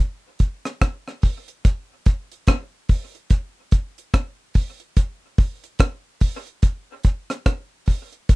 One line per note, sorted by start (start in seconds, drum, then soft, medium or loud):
0.39 kick medium
0.39 closed hi-hat medium
0.65 cross-stick medium
0.65 closed hi-hat medium
0.81 kick loud
0.81 cross-stick loud
0.81 closed hi-hat medium
1.08 cross-stick medium
1.22 kick medium
1.22 open hi-hat medium
1.48 closed hi-hat medium
1.65 kick loud
1.65 closed hi-hat medium
2.06 kick loud
2.06 closed hi-hat medium
2.32 closed hi-hat medium
2.47 kick loud
2.47 cross-stick loud
2.47 closed hi-hat medium
2.89 kick medium
2.89 open hi-hat medium
3.15 closed hi-hat soft
3.30 kick loud
3.30 closed hi-hat medium
3.71 kick loud
3.71 closed hi-hat medium
3.98 closed hi-hat medium
4.14 kick loud
4.14 cross-stick loud
4.14 closed hi-hat medium
4.54 kick medium
4.54 open hi-hat medium
4.80 closed hi-hat medium
4.97 kick loud
4.97 closed hi-hat medium
5.38 kick loud
5.38 open hi-hat medium
5.64 closed hi-hat medium
5.79 kick loud
5.79 cross-stick loud
5.79 closed hi-hat medium
6.21 kick medium
6.21 open hi-hat medium
6.47 closed hi-hat soft
6.62 kick loud
6.62 closed hi-hat medium
7.03 kick loud
7.03 closed hi-hat medium
7.30 cross-stick medium
7.30 closed hi-hat medium
7.46 kick loud
7.46 cross-stick loud
7.46 closed hi-hat medium
7.86 kick medium
7.86 open hi-hat medium
8.12 closed hi-hat medium
8.29 kick loud
8.29 closed hi-hat medium